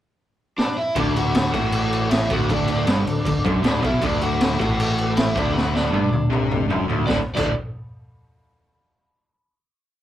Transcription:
0.58 overdriven electric guitar D4 D5, snare
0.77 overdriven electric guitar E4 E5
0.95 picked electric bass D1, distorted electric guitar D2, overdriven electric guitar D4 D5, kick, crash
1.16 overdriven electric guitar F#4 F#5, crash
1.34 snare, crash
1.54 picked electric bass A1, distorted electric guitar A2, overdriven electric guitar F#4 F#5, kick, crash
1.72 crash
1.92 crash
2.09 overdriven electric guitar E4 E5, snare, crash
2.30 picked electric bass D1, distorted electric guitar D2, overdriven electric guitar F#4 F#5, kick, crash
2.49 overdriven electric guitar D4 D5, kick, crash
2.68 overdriven electric guitar D4, crash
2.72 overdriven electric guitar D5
2.86 picked electric bass G1, distorted electric guitar G2, snare, crash
3.05 picked electric bass D1, distorted electric guitar D2, crash
3.25 picked electric bass D1, distorted electric guitar D2, kick, crash
3.45 picked electric bass F#1, distorted electric guitar F#2, kick, crash
3.62 picked electric bass D1, distorted electric guitar D2, overdriven electric guitar D4 D5, snare, crash
3.82 picked electric bass B1, distorted electric guitar B2, overdriven electric guitar E4 E5, kick, crash
4.01 picked electric bass D1, distorted electric guitar D2, overdriven electric guitar D4, kick, crash
4.06 overdriven electric guitar D5
4.21 overdriven electric guitar F#4 F#5, crash
4.41 snare, crash
4.59 picked electric bass A1, distorted electric guitar A2, overdriven electric guitar F#4 F#5, kick, crash
4.80 crash
4.98 crash
5.17 overdriven electric guitar E4 E5, snare, crash
5.34 picked electric bass D1, distorted electric guitar D2, overdriven electric guitar D4 D5, kick, crash
5.54 overdriven electric guitar F#4 F#5, snare
5.73 overdriven electric guitar D4 D5, snare
5.92 picked electric bass G1, distorted electric guitar G2, high tom
6.11 picked electric bass D1, distorted electric guitar D2, high tom
6.30 picked electric bass C2, distorted electric guitar C3, mid tom
6.51 mid tom
6.68 picked electric bass F#1, distorted electric guitar F#2, floor tom
6.87 picked electric bass D1, distorted electric guitar D2, floor tom
7.07 picked electric bass D1, distorted electric guitar D2 A2 D3, overdriven electric guitar D5, kick, snare
7.35 picked electric bass D1, distorted electric guitar D2 A2 D3, overdriven electric guitar D5, kick, crash

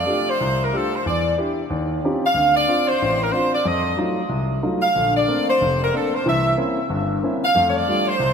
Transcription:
Already playing: saxophone section D5
0.06 grand piano A3 D4 F4 G4
0.30 saxophone section C5
0.41 grand piano C2
0.64 saxophone section A#4
0.73 grand piano A3 D4 F4 G4, saxophone section A4
0.95 saxophone section C5
1.06 grand piano E2, saxophone section D5
1.38 grand piano D4 E4 G4
1.70 grand piano D#2
2.04 grand piano C4 C#4 D#4 F4 G4
2.26 saxophone section F5
2.34 grand piano D2
2.56 saxophone section D5
2.68 grand piano C4 D4 F4
2.88 saxophone section C5
3.02 grand piano A1
3.23 saxophone section A#4
3.32 grand piano C4 D4 F4, saxophone section C5
3.54 saxophone section D5
3.65 grand piano F2, saxophone section D#5
3.97 grand piano F#3 A3 D#4 F4
4.29 grand piano C2
4.63 grand piano F#3 A3 D#4 F4
4.82 saxophone section F5
4.95 grand piano A#1 D3
5.17 saxophone section D5
5.27 grand piano A3 A#3 C4 D4
5.50 saxophone section C5
5.61 grand piano F1
5.84 saxophone section A#4
5.92 grand piano A3 A#3 C4 D4
5.97 saxophone section A4
6.15 saxophone section C5
6.26 grand piano C2 E3, saxophone section E5
6.57 grand piano A#3 C4 C#4 E4
6.90 grand piano G1 G2
7.23 grand piano A#3 C4 C#4 E4
7.45 saxophone section F5
7.55 grand piano F2 A3
7.69 saxophone section C#5
7.77 saxophone section D5
7.88 grand piano G3 A3 D4 F4
8.08 saxophone section C5
8.20 grand piano C2

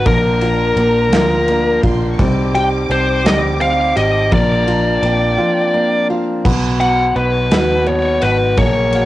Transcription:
Already playing: steel-string acoustic guitar B3
0.05 fingered electric bass A#1, steel-string acoustic guitar F3 D4, grand piano A#3, lead electric guitar A#4, violin section A#5, kick, ride
0.41 steel-string acoustic guitar F3, grand piano F4, ride
0.76 fingered electric bass A#1, steel-string acoustic guitar A#3, grand piano A#3, ride
1.12 fingered electric bass D2, steel-string acoustic guitar F3, grand piano F4, snare, ride
1.48 grand piano A#3, steel-string acoustic guitar D4, ride
1.82 fingered electric bass A#1, steel-string acoustic guitar A#3, grand piano F4, violin section C6, kick, ride
2.12 violin section C#6
2.19 fingered electric bass C2, steel-string acoustic guitar G3 D#4, grand piano C4, violin section D6, kick, ride
2.54 steel-string acoustic guitar G3, grand piano G4, lead electric guitar G5, ride
2.89 fingered electric bass C2, grand piano C4, lead electric guitar C5, ride
3.24 fingered electric bass D2, steel-string acoustic guitar G3, grand piano G4, lead electric guitar D#5, snare, ride
3.60 grand piano C4, steel-string acoustic guitar D#4, lead electric guitar F5, ride
3.96 fingered electric bass G#1, grand piano G4, lead electric guitar D#5, ride
4.31 fingered electric bass A#1, steel-string acoustic guitar F3 D4, grand piano A#3, lead electric guitar D5, violin section A#5, kick, ride
4.67 steel-string acoustic guitar F3, grand piano F4, ride
5.02 fingered electric bass A#1, grand piano A#3, steel-string acoustic guitar C4, violin section G5, ride
5.38 steel-string acoustic guitar F3, grand piano F4
5.74 grand piano A#3, steel-string acoustic guitar D4
6.09 steel-string acoustic guitar C4, grand piano F4, violin section F5
6.45 fingered electric bass B1, steel-string acoustic guitar F#3 F#4, grand piano B3, kick, crash
6.80 steel-string acoustic guitar B3, grand piano F#4, lead electric guitar F#5, ride
7.15 fingered electric bass B1, grand piano B3, steel-string acoustic guitar D#4, lead electric guitar B4, ride
7.51 fingered electric bass D#2, steel-string acoustic guitar B3, grand piano F#4, snare, ride
7.86 grand piano B3, steel-string acoustic guitar F#4, lead electric guitar C#5, ride
8.22 fingered electric bass G#1, steel-string acoustic guitar D#4, grand piano F#4, lead electric guitar B4, ride
8.57 fingered electric bass A#1, steel-string acoustic guitar F#3 G#4, grand piano A#3, lead electric guitar C#5, kick, ride
8.93 steel-string acoustic guitar A#3, grand piano F#4, ride

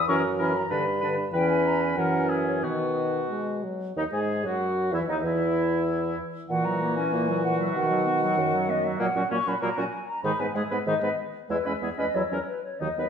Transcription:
0.08 bassoon F#2, french horn E3, clarinet C#4, oboe A#4, flute C#6
0.39 french horn E3, clarinet C#4, oboe A#4, flute B5
0.57 flute A#5
0.70 bassoon G2, french horn D3, clarinet D4, oboe B4, flute B5
1.01 french horn D3, clarinet D4, oboe B4
1.33 bassoon E2, french horn E3, clarinet C#4, oboe B4, flute G5
1.50 flute G#5
1.65 flute A#5
1.81 flute G#5
1.97 bassoon F#2, french horn E3, clarinet C#4, oboe A#4, flute F#5
2.29 oboe G#4, flute E5
2.47 flute C#5
2.62 bassoon B2, french horn D#3, clarinet B3, oboe F#4, flute B4
3.30 french horn G#3
3.63 french horn F#3
3.96 bassoon D#2, french horn D#3, oboe D#4, clarinet D#4, flute D#5
4.12 bassoon G#2, french horn G#3, oboe G#4, clarinet G#4, flute G#5
4.44 bassoon F#2, french horn F#3, oboe F#4, clarinet F#4, flute F#5
4.92 bassoon E2, french horn E3, clarinet E4, oboe E4, flute E5
5.08 bassoon D#2, french horn D#3, clarinet D#4, oboe D#4, flute D#5
5.23 bassoon E2, french horn E3, clarinet E4, oboe E4, flute E5
6.49 bassoon A#2, french horn E3, clarinet E3, oboe F#4, flute F#5
6.65 clarinet F#3, flute A#5
6.81 clarinet A#3
6.96 clarinet C#4, flute G#5
7.12 bassoon A#2, clarinet A#3
7.29 clarinet F#3
7.43 clarinet E3, flute F#5
7.60 clarinet F#3, flute E5
7.75 bassoon B2, clarinet D#3, french horn D#3, flute F#5
7.90 clarinet F#3
8.06 clarinet B3
8.23 clarinet F#3
8.37 bassoon F#2, clarinet D#3
8.54 clarinet F#3
8.69 clarinet B3, flute D#5
8.84 clarinet F#3, flute E5
8.99 bassoon A#2, french horn F#3, clarinet F#3, oboe A#3, flute F#5
9.15 bassoon A#2, french horn F#3, clarinet C#4, oboe F#4
9.30 bassoon A#2, french horn F#3, clarinet A#3, oboe C#4, flute C#6
9.47 bassoon A#2, french horn F#3, clarinet C#4, oboe F#4, flute B5
9.62 bassoon A#2, clarinet F#3, french horn F#3, oboe A#3, flute A#5
9.77 bassoon A#2, french horn F#3, clarinet C#4, oboe F#4, flute G#5
10.08 flute A#5
10.23 bassoon G#2, clarinet D#3, french horn G#3, oboe D#4, flute B5
10.39 bassoon G#2, french horn G#3, clarinet B3, oboe B4, flute G#5
10.55 bassoon G#2, clarinet G#3, french horn G#3, oboe G#4, flute E5
10.71 bassoon G#2, french horn G#3, clarinet B3, oboe B4
10.86 bassoon G#2, clarinet D#3, french horn G#3, oboe D#4, flute D#5
11.01 bassoon G#2, french horn G#3, clarinet B3, oboe B4
11.49 bassoon E2, clarinet G#3, french horn G#3, oboe E4, flute B4
11.65 bassoon E2, french horn G#3, clarinet C#4, oboe B4, flute E5
11.81 bassoon E2, french horn G#3, clarinet B3, oboe G#4
11.98 bassoon E2, french horn G#3, clarinet C#4, oboe B4, flute D#5
12.14 bassoon E2, french horn F#3, clarinet F#3, oboe E4, flute C#5
12.31 bassoon E2, french horn F#3, clarinet C#4, oboe A#4
12.47 flute B4
12.64 flute C#5
12.79 bassoon D#2, clarinet D#3, french horn F#3, oboe D#4, flute D#5
12.97 bassoon D#2, french horn F#3, clarinet B3, oboe B4

